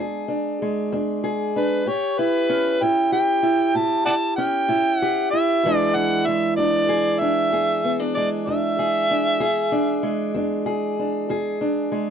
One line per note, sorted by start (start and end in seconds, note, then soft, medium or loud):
0.00 0.54 E2 medium
0.00 0.58 G#3 medium
0.00 0.27 D4 medium
0.00 1.22 G#4 medium
0.28 0.91 D4 medium
0.62 1.87 G#3 medium
0.92 1.49 E2 medium
0.92 1.55 D4 medium
1.24 1.83 G#4 medium
1.56 1.83 D4 medium
1.56 1.90 B4 medium
1.86 2.43 A2 medium
1.86 3.11 G4 medium
1.86 2.20 C#5 medium
2.18 2.82 E4 medium
2.18 2.85 B4 loud
2.49 4.37 C#4 medium
2.81 3.38 A2 medium
2.81 3.42 E4 medium
2.81 3.12 G5 loud
3.12 3.75 G4 medium
3.12 3.78 G5 loud
3.43 4.06 E4 medium
3.75 4.31 A2 medium
3.75 5.01 G4 medium
3.75 4.05 A5 loud
4.06 4.68 E4 medium
4.06 4.14 D5 medium
4.06 4.14 F#5 medium
4.06 4.35 A5 loud
4.36 5.60 C#4 medium
4.36 4.98 G5 loud
4.68 5.26 A2 medium
4.68 5.33 E4 medium
4.98 5.27 F#5 loud
5.02 5.61 G4 medium
5.31 5.66 E4 medium
5.31 5.77 E5 loud
5.63 6.20 E2 medium
5.63 12.10 E3 medium
5.63 6.27 G#3 medium
5.63 5.94 D4 medium
5.63 6.88 G#4 medium
5.77 5.97 D5 loud
5.95 6.58 D4 medium
5.95 6.27 F#5 medium
6.26 8.17 G#3 medium
6.26 6.56 E5 medium
6.56 7.15 E2 medium
6.56 7.21 D4 medium
6.56 7.21 D5 loud
6.89 7.52 G#4 medium
7.20 7.84 D4 medium
7.20 7.98 E5 loud
7.52 8.09 E2 medium
7.52 8.78 G#4 medium
7.84 8.00 B3 medium
8.00 8.47 D4 soft
8.15 10.03 G#3 medium
8.15 8.29 D5 medium
8.46 9.04 E2 medium
8.46 9.10 D4 medium
8.46 10.32 E5 loud
8.79 9.40 G#4 medium
9.11 9.43 D4 medium
9.40 9.98 E2 medium
9.40 10.66 G#4 medium
9.72 10.35 D4 medium
10.03 11.91 G#3 medium
10.34 10.92 E2 medium
10.34 10.99 D4 medium
10.66 11.30 G#4 medium
10.99 11.60 D4 medium
11.29 11.87 E2 medium
11.29 12.10 G#4 medium
11.61 12.10 D4 medium
11.92 12.10 G#3 medium